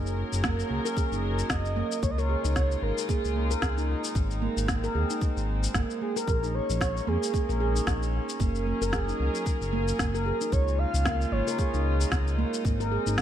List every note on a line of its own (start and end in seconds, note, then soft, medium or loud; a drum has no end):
0.00 0.24 F#1 loud
0.00 2.01 F#3 medium
0.00 2.01 C#4 medium
0.00 2.01 G#4 medium
0.00 2.01 A#4 medium
0.07 shaker soft
0.33 0.64 F#1 medium
0.33 shaker medium
0.44 0.69 A#3 loud
0.44 kick medium
0.44 snare loud
0.44 shaker medium
0.60 shaker soft
0.70 0.80 C#2 loud
0.70 0.84 A#3 medium
0.85 0.96 A#4 medium
0.85 shaker medium
0.97 1.11 G#4 medium
0.97 kick loud
0.97 shaker medium
1.12 1.43 F#1 medium
1.12 1.64 D#4 medium
1.12 shaker soft
1.39 shaker medium
1.50 1.83 F#1 medium
1.50 1.99 D#5 loud
1.50 kick medium
1.50 snare loud
1.50 shaker medium
1.65 shaker soft
1.76 2.02 A#3 loud
1.92 shaker medium
2.03 2.36 C#2 medium
2.03 4.13 C#3 medium
2.03 8.36 G#3 medium
2.03 2.17 A#3 medium
2.03 6.24 D#4 medium
2.03 4.13 F4 medium
2.03 2.12 C#5 loud
2.03 kick loud
2.03 shaker medium
2.10 2.20 D#5 medium
2.18 2.29 A#4 loud
2.18 2.84 C#5 loud
2.18 shaker soft
2.30 2.44 G#4 medium
2.45 2.76 C#2 medium
2.45 2.96 D#4 medium
2.45 shaker medium
2.56 kick loud
2.56 snare medium
2.56 shaker medium
2.72 shaker soft
2.82 2.92 G#1 loud
2.82 3.09 A#4 medium
2.98 shaker medium
3.09 3.35 A#3 medium
3.09 3.59 G#4 medium
3.09 kick loud
3.09 shaker medium
3.24 3.56 C#2 medium
3.24 shaker soft
3.36 3.49 A#3 medium
3.51 3.62 A#4 loud
3.51 shaker medium
3.62 3.95 C#2 medium
3.62 3.77 G#4 medium
3.62 kick loud
3.62 snare loud
3.62 shaker medium
3.77 4.15 D#4 medium
3.77 shaker soft
4.04 shaker medium
4.15 4.48 G#1 medium
4.15 6.26 C4 medium
4.15 kick loud
4.15 shaker medium
4.31 shaker soft
4.42 4.67 A#3 medium
4.57 4.89 G#1 loud
4.57 shaker medium
4.68 4.82 A#3 medium
4.68 kick loud
4.68 snare medium
4.68 shaker medium
4.84 4.95 A#4 loud
4.84 shaker soft
4.95 5.05 D#2 loud
4.95 5.09 G#4 medium
5.10 5.62 D#4 medium
5.10 shaker medium
5.21 kick loud
5.21 shaker medium
5.37 5.68 G#1 medium
5.37 shaker soft
5.64 shaker medium
5.74 5.84 G#1 medium
5.74 6.00 A#3 medium
5.74 kick loud
5.74 snare medium
5.74 shaker medium
5.90 shaker soft
6.01 6.15 A#3 medium
6.01 6.13 G#4 medium
6.16 6.27 A#4 medium
6.16 shaker medium
6.27 6.61 A#1 medium
6.27 8.38 A#3 medium
6.27 10.48 C#4 medium
6.27 6.42 G#4 medium
6.27 6.56 A#4 loud
6.27 kick loud
6.27 shaker soft
6.43 6.95 D#4 medium
6.43 shaker soft
6.55 7.09 C#5 loud
6.70 7.01 A#1 medium
6.70 shaker medium
6.81 kick medium
6.81 snare medium
6.81 shaker medium
6.97 shaker soft
7.07 7.17 F2 medium
7.07 7.33 A#3 medium
7.07 7.87 G#4 loud
7.23 shaker medium
7.34 7.48 A#3 medium
7.34 kick medium
7.34 shaker medium
7.49 7.81 A#1 medium
7.49 7.60 A#4 medium
7.49 shaker soft
7.60 7.75 G#4 medium
7.76 8.27 D#4 medium
7.76 shaker medium
7.87 8.20 A#1 medium
7.87 kick medium
7.87 snare loud
7.87 shaker medium
8.03 shaker soft
8.29 shaker medium
8.40 8.73 F#1 medium
8.40 10.50 F#3 medium
8.40 8.65 A#3 medium
8.40 10.50 G#4 medium
8.40 10.50 A#4 medium
8.40 kick loud
8.40 shaker soft
8.55 shaker soft
8.67 8.80 A#3 medium
8.82 9.13 F#1 medium
8.82 8.93 A#4 medium
8.82 shaker medium
8.93 9.08 G#4 medium
8.93 kick medium
8.93 snare medium
8.93 shaker soft
9.08 9.60 D#4 medium
9.08 shaker soft
9.20 9.30 C#2 medium
9.35 shaker medium
9.46 kick medium
9.46 shaker soft
9.62 9.93 F#1 medium
9.62 shaker soft
9.73 9.98 A#3 loud
9.88 shaker medium
9.99 10.32 F#1 medium
9.99 10.13 A#3 medium
9.99 kick medium
9.99 snare medium
9.99 shaker medium
10.15 10.25 A#4 medium
10.15 shaker soft
10.25 10.40 G#4 medium
10.25 10.54 A#4 medium
10.41 10.53 D#4 medium
10.41 shaker medium
10.52 10.86 C#2 medium
10.52 12.63 C#3 medium
10.52 13.22 G#3 medium
10.52 13.22 D#4 medium
10.52 12.63 F4 medium
10.52 10.80 C#5 loud
10.52 kick loud
10.52 shaker medium
10.68 shaker soft
10.79 11.33 F5 loud
10.94 11.26 C#2 medium
10.94 shaker medium
11.05 11.31 A#3 loud
11.05 kick medium
11.05 snare loud
11.05 shaker medium
11.21 shaker soft
11.32 11.42 G#1 medium
11.32 11.46 A#3 medium
11.32 12.12 C#5 medium
11.47 11.58 A#4 medium
11.47 shaker medium
11.59 11.73 G#4 medium
11.59 kick loud
11.59 shaker soft
11.74 12.05 C#2 medium
11.74 12.26 D#4 medium
11.74 shaker soft
12.01 shaker medium
12.12 12.45 C#2 medium
12.12 kick medium
12.12 snare loud
12.12 shaker soft
12.28 shaker soft
12.38 12.64 A#3 medium
12.54 shaker medium
12.64 12.98 G#1 loud
12.64 12.79 A#3 medium
12.64 13.22 C4 medium
12.64 kick loud
12.64 shaker medium
12.80 12.91 A#4 loud
12.80 shaker soft
12.92 13.06 G#4 medium
13.06 13.22 G#1 medium
13.06 13.22 D#4 medium
13.06 shaker medium
13.18 kick medium
13.18 snare loud
13.18 shaker soft